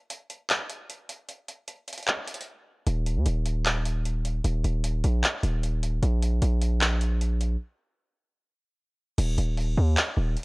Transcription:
0.10 closed hi-hat loud
0.30 closed hi-hat medium
0.50 clap loud
0.50 closed hi-hat medium
0.70 closed hi-hat medium
0.90 closed hi-hat medium
1.09 closed hi-hat medium
1.29 closed hi-hat medium
1.49 closed hi-hat medium
1.68 closed hi-hat loud
1.88 closed hi-hat medium
1.93 closed hi-hat medium
1.98 closed hi-hat medium
2.03 closed hi-hat soft
2.08 clap loud
2.08 closed hi-hat medium
2.27 closed hi-hat medium
2.34 closed hi-hat medium
2.41 closed hi-hat medium
2.87 3.18 D#1 loud
2.87 closed hi-hat medium
3.06 closed hi-hat medium
3.16 3.26 D#2 loud
3.26 4.41 D#1 loud
3.26 closed hi-hat loud
3.46 closed hi-hat medium
3.66 clap loud
3.66 closed hi-hat medium
3.85 closed hi-hat medium
4.05 closed hi-hat medium
4.25 closed hi-hat medium
4.44 4.63 D#1 loud
4.44 closed hi-hat medium
4.64 5.02 D#1 loud
4.64 closed hi-hat medium
4.84 closed hi-hat loud
5.04 5.23 A#1 loud
5.04 closed hi-hat medium
5.24 clap loud
5.24 closed hi-hat medium
5.43 6.00 D#1 loud
5.43 closed hi-hat medium
5.63 closed hi-hat medium
5.83 closed hi-hat medium
6.02 6.40 A#1 loud
6.02 closed hi-hat medium
6.22 closed hi-hat medium
6.42 7.56 A#1 loud
6.42 closed hi-hat loud
6.61 closed hi-hat medium
6.81 clap loud
6.81 closed hi-hat medium
7.01 closed hi-hat medium
7.21 closed hi-hat medium
7.41 closed hi-hat medium
9.18 9.37 D#1 loud
9.18 closed hi-hat medium
9.18 crash loud
9.38 9.76 D#1 loud
9.38 closed hi-hat medium
9.57 closed hi-hat loud
9.77 9.96 D#2 loud
9.97 clap loud
9.97 closed hi-hat medium
10.17 10.36 D#1 loud
10.37 closed hi-hat soft

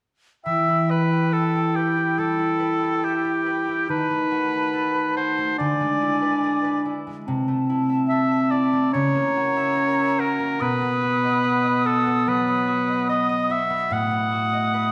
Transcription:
0.44 3.93 E3 soft
0.44 3.86 E4 soft
0.44 0.92 E5 soft
0.44 3.84 G5 soft
0.69 1.96 E4 soft
0.91 1.34 B4 soft
0.91 1.75 B4 soft
1.13 1.54 G4 soft
1.33 1.78 A4 soft
1.33 3.02 E5 soft
1.55 2.81 G4 soft
1.76 2.21 G4 soft
1.76 2.58 B4 soft
1.97 2.38 E4 soft
2.18 3.92 G3 soft
2.18 3.06 A4 soft
2.39 3.67 E4 soft
2.60 3.45 B4 soft
2.82 3.23 G4 soft
3.04 3.90 G4 soft
3.04 3.93 E5 soft
3.25 3.92 G4 soft
3.46 4.52 B4 soft
3.68 3.93 E4 soft
3.89 5.62 D#3 soft
3.89 5.60 D#4 soft
3.89 5.14 B4 medium
3.89 5.59 A5 soft
4.10 5.37 A3 soft
4.31 5.15 F#4 soft
4.53 4.93 B4 soft
4.73 5.62 A4 soft
4.94 6.21 B4 soft
5.16 5.62 F#4 soft
5.16 5.58 C5 soft
5.38 5.63 A3 soft
5.58 7.30 D3 soft
5.58 6.99 D4 soft
5.58 6.82 D5 soft
5.58 6.98 G#5 soft
5.80 7.06 G#3 soft
6.02 6.84 E4 soft
6.22 6.63 B4 soft
6.44 7.30 G#4 soft
6.64 7.29 B4 soft
6.85 7.68 E4 soft
7.07 7.30 G#3 soft
7.25 8.96 C3 soft
7.25 8.93 C4 soft
7.25 8.93 A5 soft
7.48 8.72 A3 soft
7.70 8.51 E4 soft
7.90 8.30 E5 soft
8.09 8.96 A4 soft
8.09 8.53 E5 soft
8.31 9.55 E5 soft
8.51 10.64 E4 soft
8.51 8.92 D5 soft
8.73 8.96 A3 soft
8.91 10.64 C#3 soft
8.91 10.60 C#4 soft
8.91 10.21 C#5 medium
8.91 10.61 A#5 soft
9.15 10.38 A#3 soft
9.36 10.18 F#4 soft
9.57 9.97 E5 soft
9.77 10.64 A#4 soft
9.98 10.64 E5 soft
10.19 11.01 F#4 soft
10.19 10.63 A#4 medium
10.39 10.63 A#3 soft
10.60 13.95 B2 soft
10.60 13.61 B3 soft
10.60 11.88 B4 medium
10.60 13.64 D#6 soft
10.82 12.06 B3 soft
11.02 11.85 F#4 soft
11.24 11.64 D#5 soft
11.44 13.08 B4 soft
11.65 12.87 D#5 soft
11.86 12.66 F#4 soft
11.86 12.30 A4 soft
12.07 12.47 B3 soft
12.27 14.92 F#3 soft
12.27 13.09 B4 medium
12.48 13.69 B3 soft
12.67 13.49 F#4 soft
12.88 13.28 D#5 soft
13.09 14.72 B4 soft
13.09 13.53 D#5 medium
13.29 14.52 D#5 soft
13.50 14.31 F#4 soft
13.50 13.95 E5 medium
13.70 14.10 B3 soft
13.91 14.92 A2 soft
13.91 14.92 A3 soft
13.91 14.92 F#5 medium
13.91 14.92 D#6 soft
14.11 14.92 B3 soft
14.32 14.92 F#4 soft
14.53 14.92 D#5 soft
14.74 14.92 B4 soft

